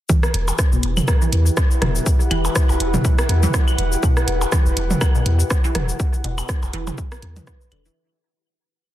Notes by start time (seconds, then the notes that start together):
0.09 E3 E4 G4, kick, cabasa
0.23 B4, cross-stick, cabasa
0.34 E1, closed hi-hat
0.48 cabasa, percussion blips
0.59 kick, cross-stick, closed hi-hat, cabasa
0.72 E1 B2, cabasa
0.83 E1 F#5, closed hi-hat
0.97 mid tom, cabasa, claves
1.08 kick, cross-stick, cabasa
1.22 E3, cabasa
1.32 E2, closed hi-hat
1.46 cabasa
1.57 kick, cross-stick, cabasa
1.71 cabasa
1.82 E1 B2, cross-stick, closed hi-hat, mid tom
1.96 cabasa
2.06 kick, cabasa
2.20 cabasa
2.31 E1 E3, closed hi-hat, claves
2.45 cabasa, percussion blips
2.55 kick, cross-stick, closed hi-hat, cabasa
2.69 E1, cabasa, percussion blips
2.80 E1, closed hi-hat
2.94 B2, mid tom, cabasa
3.05 kick, cabasa
3.19 cross-stick, cabasa
3.29 E2, closed hi-hat
3.43 E3, mid tom, cabasa
3.54 kick, cross-stick, cabasa
3.68 cabasa, claves
3.78 E1, closed hi-hat
3.92 cabasa
4.03 B2, kick, cabasa
4.17 cross-stick, cabasa
4.28 E1, closed hi-hat
4.41 cabasa, percussion blips
4.52 E3, kick, cross-stick, closed hi-hat, cabasa
4.66 E1, cabasa
4.77 E1, closed hi-hat
4.91 mid tom, cabasa
5.01 kick, cross-stick, cabasa, claves
5.15 B2, cabasa
5.26 E2, closed hi-hat
5.40 cabasa
5.50 kick, cross-stick, cabasa
5.64 E3, cabasa
5.75 E1, cross-stick, closed hi-hat, mid tom
5.89 cabasa
6.00 kick, cabasa
6.14 cabasa
6.24 E1 B2, closed hi-hat
6.38 cabasa, claves, percussion blips
6.49 kick, cross-stick, closed hi-hat, cabasa
6.63 E1, cabasa, percussion blips
6.73 E1 E3, closed hi-hat
6.87 mid tom, cabasa, percussion blips
6.98 kick, cabasa
7.12 cross-stick, cabasa
7.22 E2, closed hi-hat
7.36 E3, closed hi-hat, mid tom, cabasa
7.47 B3, kick, cross-stick, cabasa
7.61 cabasa
7.72 E1 D3, closed hi-hat, claves
7.86 E3, cabasa